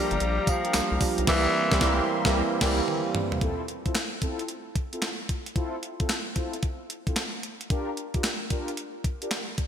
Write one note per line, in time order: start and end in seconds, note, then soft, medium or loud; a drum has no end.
0.00 0.74 F3 medium
0.00 0.50 G3 medium
0.00 0.74 G3 medium
0.00 0.74 A#3 medium
0.00 0.13 D4 medium
0.00 0.75 D4 medium
0.00 0.13 F4 medium
0.00 0.13 G4 medium
0.00 1.02 G4 medium
0.00 1.25 G4 medium
0.00 0.13 A#4 medium
0.00 1.25 F5 medium
0.00 1.25 A#5 loud
0.11 0.18 G1 medium
0.11 closed hi-hat medium
0.20 0.40 A#1 loud
0.20 closed hi-hat medium
0.47 1.01 F3 medium
0.47 kick loud
0.47 closed hi-hat medium
0.47 tambourine medium
0.64 0.78 D4 medium
0.64 0.78 F4 medium
0.64 0.78 G4 medium
0.64 0.78 A#4 medium
0.64 closed hi-hat medium
0.74 0.81 C2 medium
0.74 0.94 F3 medium
0.74 0.94 G3 medium
0.74 0.95 A#3 medium
0.74 0.95 D4 medium
0.74 0.95 F4 medium
0.74 snare medium
0.74 clap medium
0.74 closed hi-hat medium
0.74 tambourine loud
0.92 0.98 C2 medium
1.01 1.21 F3 medium
1.01 1.21 G3 medium
1.01 1.21 A#3 medium
1.01 1.22 D4 medium
1.01 1.22 G4 medium
1.01 kick medium
1.01 open hi-hat medium
1.01 tambourine medium
1.18 1.25 B1 medium
1.18 closed hi-hat medium
1.27 1.47 C2 loud
1.27 1.47 E3 loud
1.27 2.04 E3 loud
1.27 1.47 G3 loud
1.27 1.47 A#3 loud
1.27 1.47 C4 loud
1.27 1.48 C4 loud
1.27 1.47 E4 loud
1.27 1.47 G4 loud
1.27 1.48 G4 loud
1.27 1.47 A#4 loud
1.27 3.40 A#4 medium
1.27 3.40 E5 medium
1.27 3.40 C6 medium
1.27 kick loud
1.27 snare loud
1.27 crash medium
1.71 1.80 C2 loud
1.71 1.80 E3 loud
1.71 1.80 G3 loud
1.71 1.80 A#3 loud
1.71 1.79 C4 loud
1.71 1.80 C4 loud
1.71 1.79 E4 loud
1.71 1.79 G4 loud
1.71 1.80 G4 loud
1.71 1.80 A#4 loud
1.71 kick loud
1.71 snare loud
1.80 2.01 C2 loud
1.80 2.01 E3 medium
1.80 2.01 G3 medium
1.80 2.01 A#3 loud
1.80 2.00 C4 loud
1.80 2.01 C4 loud
1.80 2.00 E4 loud
1.80 2.00 G4 loud
1.80 2.01 G4 loud
1.80 2.01 A#4 loud
1.80 kick loud
1.80 snare loud
2.25 2.42 C2 loud
2.25 2.42 E3 loud
2.25 2.42 G3 loud
2.25 2.42 A#3 loud
2.25 2.42 C4 loud
2.25 2.43 C4 loud
2.25 2.42 E4 loud
2.25 2.42 G4 loud
2.25 2.43 G4 loud
2.25 2.42 A#4 loud
2.25 kick loud
2.25 snare loud
2.61 2.81 C2 loud
2.61 2.81 E3 loud
2.61 2.81 G3 loud
2.61 2.81 A#3 loud
2.61 2.81 C4 loud
2.61 2.81 E4 loud
2.61 2.81 G4 loud
2.61 2.82 G4 loud
2.61 2.81 A#4 loud
2.61 kick loud
2.61 snare loud
2.61 crash medium
2.88 high tom medium
3.15 mid tom loud
3.32 floor tom loud
3.41 3.61 C4 medium
3.41 3.61 E4 medium
3.41 3.61 F4 medium
3.41 3.62 A4 medium
3.41 kick loud
3.41 closed hi-hat medium
3.68 closed hi-hat medium
3.85 4.00 C4 medium
3.85 4.00 E4 medium
3.85 4.00 F4 medium
3.85 4.00 A4 medium
3.85 kick medium
3.85 closed hi-hat soft
3.95 snare loud
3.95 clap medium
3.95 closed hi-hat medium
4.22 4.42 C4 medium
4.22 4.42 E4 medium
4.22 4.42 F4 medium
4.22 4.42 A4 medium
4.22 kick medium
4.22 closed hi-hat medium
4.39 closed hi-hat soft
4.48 closed hi-hat medium
4.76 kick medium
4.76 closed hi-hat medium
4.93 5.07 C4 medium
4.93 5.07 E4 medium
4.93 5.07 F4 medium
4.93 5.07 A4 medium
4.93 closed hi-hat medium
5.02 snare medium
5.02 clap medium
5.02 closed hi-hat medium
5.29 kick medium
5.29 closed hi-hat medium
5.46 closed hi-hat medium
5.55 5.75 C4 medium
5.55 5.76 E4 medium
5.55 5.76 F4 medium
5.55 5.76 A4 medium
5.55 kick loud
5.55 closed hi-hat medium
5.83 closed hi-hat medium
6.00 6.14 C4 medium
6.00 6.14 E4 medium
6.00 6.14 F4 medium
6.00 6.14 A4 medium
6.00 kick medium
6.00 closed hi-hat medium
6.09 snare loud
6.09 clap medium
6.09 closed hi-hat medium
6.36 6.56 C4 medium
6.36 6.56 E4 medium
6.36 6.56 F4 medium
6.36 6.56 A4 medium
6.36 kick medium
6.36 closed hi-hat medium
6.53 closed hi-hat soft
6.63 kick medium
6.63 closed hi-hat medium
6.90 closed hi-hat medium
7.07 7.21 C4 medium
7.07 7.21 E4 medium
7.07 7.21 F4 medium
7.07 7.21 A4 medium
7.07 kick medium
7.07 closed hi-hat soft
7.16 snare medium
7.16 clap medium
7.16 closed hi-hat medium
7.43 closed hi-hat medium
7.61 closed hi-hat medium
7.70 7.90 D4 medium
7.70 7.90 F4 medium
7.70 7.90 G4 medium
7.70 7.90 A#4 loud
7.70 kick loud
7.70 closed hi-hat medium
7.97 closed hi-hat medium
8.14 8.28 D4 medium
8.14 8.28 F4 medium
8.14 8.28 G4 medium
8.14 8.29 A#4 medium
8.14 kick medium
8.14 closed hi-hat soft
8.23 snare loud
8.23 clap medium
8.23 closed hi-hat medium
8.50 8.70 D4 medium
8.50 8.70 F4 medium
8.50 8.70 G4 medium
8.50 8.71 A#4 medium
8.50 kick medium
8.50 closed hi-hat medium
8.68 closed hi-hat medium
8.77 closed hi-hat medium
9.04 kick medium
9.04 closed hi-hat medium
9.21 9.35 D4 medium
9.21 9.35 F4 medium
9.21 9.36 G4 medium
9.21 9.36 A#4 medium
9.21 closed hi-hat medium
9.31 snare medium
9.31 clap medium
9.31 closed hi-hat medium
9.58 kick medium
9.58 closed hi-hat medium